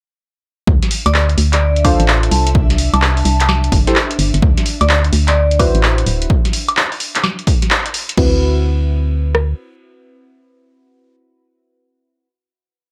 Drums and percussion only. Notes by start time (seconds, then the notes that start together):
0.67 kick
0.83 snare, closed hi-hat
0.91 open hi-hat
1.06 closed hi-hat, high woodblock
1.14 clap
1.29 closed hi-hat
1.38 open hi-hat
1.53 clap, closed hi-hat
1.76 closed hi-hat
1.85 kick, open hi-hat, high woodblock
2.00 closed hi-hat
2.08 clap
2.23 closed hi-hat
2.31 open hi-hat
2.47 closed hi-hat
2.55 kick
2.70 snare, closed hi-hat
2.78 open hi-hat
2.94 closed hi-hat, high woodblock
3.02 clap
3.17 open hi-hat
3.25 open hi-hat
3.40 clap, closed hi-hat
3.49 snare, high woodblock
3.64 closed hi-hat
3.72 kick, open hi-hat
3.87 snare, closed hi-hat
3.96 clap
4.11 closed hi-hat
4.19 open hi-hat
4.34 closed hi-hat
4.42 kick
4.58 snare, closed hi-hat
4.66 open hi-hat
4.81 closed hi-hat, high woodblock
4.89 clap
5.04 closed hi-hat
5.13 open hi-hat
5.28 clap, closed hi-hat
5.51 closed hi-hat
5.59 kick, open hi-hat, high woodblock
5.75 closed hi-hat
5.83 clap
5.98 closed hi-hat
6.06 open hi-hat
6.22 closed hi-hat
6.30 kick
6.45 snare, closed hi-hat
6.53 open hi-hat
6.69 closed hi-hat, high woodblock
6.77 clap
6.92 open hi-hat
7.00 open hi-hat
7.15 clap, closed hi-hat
7.24 snare, high woodblock
7.39 closed hi-hat
7.47 kick, open hi-hat
7.62 snare, closed hi-hat
7.71 clap
7.86 closed hi-hat
7.94 open hi-hat
8.09 closed hi-hat
8.17 kick, crash
9.35 cross-stick